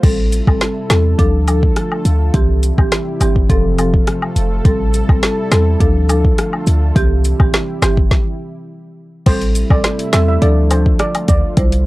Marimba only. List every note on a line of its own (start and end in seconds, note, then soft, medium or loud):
0.03 0.44 G3 medium
0.03 0.44 C4 medium
0.03 0.44 A4 loud
0.47 0.87 G3 medium
0.47 0.87 C4 medium
0.47 0.87 A4 medium
0.90 1.16 G3 medium
0.90 1.17 C4 medium
0.90 1.17 A4 medium
1.18 1.45 F3 medium
1.18 1.45 D4 medium
1.18 1.46 A4 loud
1.47 1.62 F3 medium
1.47 1.63 D4 medium
1.47 1.63 A4 medium
2.34 2.74 E3 medium
2.34 2.75 C4 medium
2.34 2.75 G4 loud
2.78 3.17 E3 medium
2.78 3.17 C4 medium
2.78 3.18 G4 medium
3.21 3.47 E3 medium
3.21 3.47 C4 medium
3.21 3.48 G4 medium
3.49 3.76 F3 medium
3.49 3.76 C4 medium
3.49 3.76 A4 loud
3.78 3.93 F3 medium
3.78 3.93 C4 medium
3.78 3.94 A4 medium
4.65 5.05 G3 medium
4.65 5.05 C4 medium
4.65 5.06 A4 loud
5.09 5.48 G3 medium
5.09 5.48 C4 medium
5.09 5.49 A4 medium
5.51 5.78 G3 medium
5.51 5.78 C4 medium
5.51 5.78 A4 medium
5.80 6.07 F3 loud
5.80 6.07 D4 medium
5.80 6.07 A4 loud
6.09 6.24 F3 medium
6.09 6.24 D4 medium
6.09 6.24 A4 medium
6.95 7.36 E3 medium
6.95 7.36 C4 medium
6.95 7.36 G4 loud
7.40 7.79 E3 medium
7.40 7.79 C4 medium
7.40 7.79 G4 medium
7.82 8.09 E3 medium
7.82 8.09 C4 medium
7.82 8.09 G4 medium
9.26 9.67 G3 medium
9.26 9.67 C4 medium
9.26 9.67 A4 loud
9.70 10.10 G3 medium
9.70 10.10 C4 medium
9.70 10.10 A4 medium
10.13 10.40 G3 medium
10.13 10.40 C4 medium
10.13 10.40 A4 medium
10.42 10.68 F3 medium
10.42 10.69 D4 medium
10.42 10.69 A4 loud
10.70 10.86 F3 medium
10.70 10.86 D4 medium
10.70 10.86 A4 medium
11.57 11.86 G3 medium
11.57 11.86 E4 medium
11.57 11.86 C5 loud